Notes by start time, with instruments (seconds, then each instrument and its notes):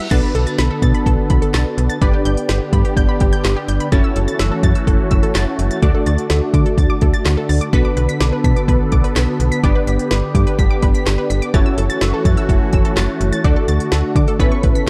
Already playing: reverse cymbal
0.11 fm bass B1, analog synth pad D3 B3 A4, analog polysynth B3 D4 F#4 A4 B4, synth arpeggio sound A6, kick, closed hi-hat, crash
0.23 synth arpeggio sound B5
0.35 fm bass B1, synth arpeggio sound A4, closed hi-hat
0.47 synth arpeggio sound A6, closed hi-hat
0.58 fm bass B1, synth arpeggio sound B5, snare, closed hi-hat
0.71 synth arpeggio sound A4
0.82 fm bass B2, synth arpeggio sound A6, kick, closed hi-hat
0.94 synth arpeggio sound B5, closed hi-hat
1.06 fm bass B1, synth arpeggio sound A4, kick, closed hi-hat
1.30 fm bass B1, synth arpeggio sound B5, kick, closed hi-hat
1.42 synth arpeggio sound A4, closed hi-hat
1.54 fm bass B1, synth arpeggio sound A6, snare, clap, closed hi-hat
1.78 fm bass B1, closed hi-hat
1.90 synth arpeggio sound A6, closed hi-hat
2.02 fm bass G1, analog synth pad D3 B3 G4, analog polysynth B3 D4 G4 B4 D5, synth arpeggio sound B5, kick, closed hi-hat
2.13 synth arpeggio sound G4
2.25 fm bass G1, synth arpeggio sound G6, closed hi-hat
2.37 closed hi-hat
2.49 fm bass G1, synth arpeggio sound G4, snare, closed hi-hat
2.73 fm bass G2, synth arpeggio sound B5, kick, closed hi-hat
2.85 synth arpeggio sound G4, closed hi-hat
2.97 fm bass G1, synth arpeggio sound G6, kick, closed hi-hat
3.09 synth arpeggio sound B5
3.20 fm bass G1, synth arpeggio sound G4, kick, closed hi-hat
3.33 synth arpeggio sound G6, closed hi-hat
3.44 fm bass G1, snare, clap, closed hi-hat
3.56 synth arpeggio sound G4
3.68 fm bass G1, synth arpeggio sound G6, closed hi-hat
3.80 synth arpeggio sound B5, closed hi-hat
3.92 fm bass F#1, analog synth pad E3 A3 F#4, analog polysynth C#4 E4 F#4 A4 C#5, synth arpeggio sound A6, kick, closed hi-hat
4.04 synth arpeggio sound E6
4.16 fm bass F#1, synth arpeggio sound A4, closed hi-hat
4.28 synth arpeggio sound A6, closed hi-hat
4.39 fm bass F#1, synth arpeggio sound E6, snare, closed hi-hat
4.52 synth arpeggio sound A4
4.63 fm bass F#2, synth arpeggio sound A6, kick, closed hi-hat
4.75 synth arpeggio sound E6, closed hi-hat
4.87 fm bass F#1, synth arpeggio sound A4, kick, closed hi-hat
5.11 fm bass F#1, synth arpeggio sound E6, kick, closed hi-hat
5.23 synth arpeggio sound A4, closed hi-hat
5.35 fm bass F#1, synth arpeggio sound A6, snare, clap, closed hi-hat
5.59 fm bass F#1, closed hi-hat
5.71 synth arpeggio sound A6, closed hi-hat
5.82 fm bass D2, analog synth pad D3, analog polysynth A3 D4 F#4 A4 D5, synth arpeggio sound D6, kick, closed hi-hat
5.95 synth arpeggio sound A4
6.06 fm bass D2, synth arpeggio sound A6, closed hi-hat
6.18 closed hi-hat
6.30 fm bass D2, synth arpeggio sound A4, snare, closed hi-hat
6.54 fm bass D3, synth arpeggio sound D6, kick, closed hi-hat
6.66 synth arpeggio sound A4, closed hi-hat
6.78 fm bass D2, synth arpeggio sound A6, kick, closed hi-hat
6.90 synth arpeggio sound D6
7.01 fm bass D2, synth arpeggio sound A4, kick, closed hi-hat
7.14 synth arpeggio sound A6, closed hi-hat
7.25 fm bass D2, snare, clap, closed hi-hat
7.37 synth arpeggio sound A4
7.49 fm bass D2, synth arpeggio sound A6, open hi-hat
7.61 synth arpeggio sound D6, closed hi-hat
7.73 fm bass B1, analog polysynth B3 D4 F#4 A4 B4, analog synth pad B3 A4, synth arpeggio sound B6, kick, closed hi-hat
7.85 synth arpeggio sound D6
7.97 fm bass B1, synth arpeggio sound B4, closed hi-hat
8.09 synth arpeggio sound B6, closed hi-hat
8.21 fm bass B1, synth arpeggio sound D6, snare, closed hi-hat
8.33 synth arpeggio sound B4
8.44 fm bass B2, synth arpeggio sound B6, kick, closed hi-hat
8.56 synth arpeggio sound D6, closed hi-hat
8.68 fm bass B1, synth arpeggio sound B4, kick, closed hi-hat
8.92 fm bass B1, synth arpeggio sound D6, kick, closed hi-hat
9.04 synth arpeggio sound B4, closed hi-hat
9.16 fm bass B1, synth arpeggio sound B6, snare, clap, closed hi-hat
9.40 fm bass B1, closed hi-hat
9.52 synth arpeggio sound B6, closed hi-hat
9.63 fm bass G1, analog synth pad D3 G4, analog polysynth B3 D4 G4 B4 D5, synth arpeggio sound D6, kick, closed hi-hat
9.75 synth arpeggio sound B4
9.87 fm bass G1, synth arpeggio sound B6, closed hi-hat
9.99 closed hi-hat
10.11 fm bass G1, synth arpeggio sound B4, snare, closed hi-hat
10.35 fm bass G2, synth arpeggio sound D6, kick, closed hi-hat
10.47 synth arpeggio sound B4, closed hi-hat
10.59 fm bass G1, synth arpeggio sound B6, kick, closed hi-hat
10.71 synth arpeggio sound D6
10.82 fm bass G1, synth arpeggio sound B4, kick, closed hi-hat
10.94 synth arpeggio sound B6, closed hi-hat
11.06 fm bass G1, snare, clap, closed hi-hat
11.18 synth arpeggio sound B4
11.30 fm bass G1, synth arpeggio sound B6, closed hi-hat
11.42 synth arpeggio sound D6, closed hi-hat
11.54 fm bass F#1, analog synth pad E3 A3 F#4, analog polysynth C#4 E4 F#4 A4 C#5, synth arpeggio sound A6, kick, closed hi-hat
11.66 synth arpeggio sound E6
11.78 fm bass F#1, synth arpeggio sound A4, closed hi-hat
11.90 synth arpeggio sound A6, closed hi-hat
12.01 fm bass F#1, synth arpeggio sound E6, snare, closed hi-hat
12.14 synth arpeggio sound A4
12.25 fm bass F#2, synth arpeggio sound A6, kick, closed hi-hat
12.37 synth arpeggio sound E6, closed hi-hat
12.49 fm bass F#1, synth arpeggio sound A4, kick, closed hi-hat
12.73 fm bass F#1, synth arpeggio sound E6, kick, closed hi-hat
12.85 synth arpeggio sound A4, closed hi-hat
12.97 fm bass F#1, synth arpeggio sound A6, snare, clap, closed hi-hat
13.21 fm bass F#1, closed hi-hat
13.33 synth arpeggio sound A6, closed hi-hat
13.44 fm bass D2, analog synth pad D3 F#4, analog polysynth A3 D4 F#4 A4 D5, synth arpeggio sound D6, kick, closed hi-hat
13.56 synth arpeggio sound A4
13.68 fm bass D2, synth arpeggio sound A6, closed hi-hat
13.80 closed hi-hat
13.92 fm bass D2, synth arpeggio sound A4, snare, closed hi-hat
14.16 fm bass D3, synth arpeggio sound D6, kick, closed hi-hat
14.28 synth arpeggio sound A4, closed hi-hat
14.40 fm bass A1, analog synth pad C#3 B3 A4, analog polysynth B3 C#4 E4 A4 B4, synth arpeggio sound B6, kick, closed hi-hat
14.52 synth arpeggio sound C#6
14.63 fm bass A1, synth arpeggio sound B4, kick, closed hi-hat
14.75 synth arpeggio sound B6, closed hi-hat